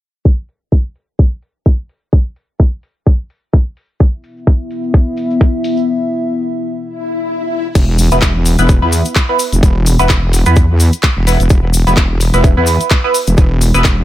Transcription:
0.25 kick
0.49 open hi-hat
0.72 kick
0.96 open hi-hat
1.19 kick
1.42 open hi-hat
1.66 kick
1.89 open hi-hat
2.13 kick
2.36 open hi-hat
2.60 kick
2.83 open hi-hat
3.07 kick
3.30 open hi-hat
3.53 kick
3.77 open hi-hat
4.00 analog synth pad B3 E4 E5, kick, cabasa
4.24 open hi-hat, cabasa
4.37 cabasa
4.47 kick, cabasa
4.71 open hi-hat, cabasa
4.83 cabasa
4.94 kick, cabasa
5.17 open hi-hat, cabasa
5.31 cabasa
5.41 kick, cabasa
5.64 open hi-hat, cabasa
5.77 cabasa
6.82 swell
7.75 wobble bass E1, kick, closed hi-hat, crash, cabasa
7.98 open hi-hat, cabasa
8.12 wobble bass E1, synth stab B3 E4 B4, closed hi-hat, cabasa
8.22 kick, clap, closed hi-hat, cabasa
8.46 open hi-hat, cabasa
8.59 wobble bass E1, synth stab B3 E4 B4, closed hi-hat, cabasa
8.69 kick, closed hi-hat, cabasa
8.82 wobble bass E2, synth stab B3 E4 B4
8.93 open hi-hat, cabasa
9.05 closed hi-hat, cabasa
9.15 kick, clap, cabasa
9.29 synth stab B3 E4 B4
9.39 open hi-hat, cabasa
9.52 wobble bass E1, closed hi-hat, cabasa
9.63 kick, closed hi-hat, cabasa
9.86 open hi-hat, cabasa
9.99 wobble bass E1, synth stab B3 E4 B4, closed hi-hat, cabasa
10.09 kick, clap, closed hi-hat, cabasa
10.33 open hi-hat, cabasa
10.46 wobble bass E2, synth stab B3 E4 B4, closed hi-hat, cabasa
10.56 kick, closed hi-hat, cabasa
10.80 open hi-hat, cabasa
10.93 closed hi-hat, cabasa
11.03 kick, clap, cabasa
11.17 wobble bass E1
11.27 synth stab B3 E4 B4, open hi-hat, cabasa
11.40 wobble bass E1, closed hi-hat, cabasa
11.50 wobble bass E1, kick, closed hi-hat, cabasa
11.73 open hi-hat, cabasa
11.87 wobble bass E1, synth stab B3 E4 B4, closed hi-hat, cabasa
11.97 kick, clap, closed hi-hat, cabasa
12.21 open hi-hat, cabasa
12.34 wobble bass E1, synth stab B3 E4 B4, closed hi-hat, cabasa
12.44 kick, closed hi-hat, cabasa
12.57 wobble bass E2, synth stab B3 E4 B4
12.66 open hi-hat, cabasa
12.80 closed hi-hat, cabasa
12.90 kick, clap, cabasa
13.04 synth stab B3 E4 B4
13.14 open hi-hat, cabasa
13.27 wobble bass E1, closed hi-hat, cabasa
13.37 kick, closed hi-hat, cabasa
13.61 open hi-hat, cabasa
13.74 wobble bass E1, synth stab B3 E4 B4, closed hi-hat, cabasa
13.84 kick, clap, closed hi-hat, cabasa

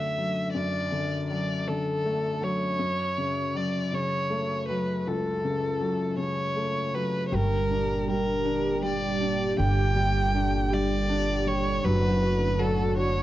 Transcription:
Already playing: felt piano F#2 D3 F#3 A3, violin E5
0.18 felt piano F#3
0.53 felt piano F#2, violin D5
0.92 felt piano D3
1.30 felt piano F#3, violin D5
1.68 felt piano D3, violin A4
2.05 felt piano A3
2.41 felt piano F#3, violin C#5
2.79 felt piano F#2
3.18 felt piano C#3
3.55 felt piano F#3, violin D5
3.93 felt piano C#3, violin C#5
4.30 felt piano A3
4.68 felt piano F#3, violin B4
5.07 felt piano C#2, violin A4
5.44 felt piano C#3
5.81 felt piano F#3
6.17 felt piano C#3, violin C#5
6.56 felt piano A3
6.94 felt piano F#3, violin B4
7.28 violin C#5
7.32 upright bass G1, analog synth pad A#2 D3 G3 D4 G4, felt piano G3, violin A#4
7.70 felt piano D4
8.08 felt piano G3, violin A#4
8.45 felt piano D4
8.83 felt piano G3, violin D5
9.20 felt piano D4
9.58 upright bass G1, felt piano D3, violin G5
9.96 felt piano G3
10.34 felt piano D4
10.71 felt piano G3, violin D5
11.09 felt piano D4
11.47 felt piano G3, violin C#5
11.84 upright bass F#1, analog synth pad A2 F#3 F#4, felt piano F#3, violin B4
12.22 felt piano F#4
12.59 felt piano F#3, violin A4
12.97 felt piano F#4, violin C#5

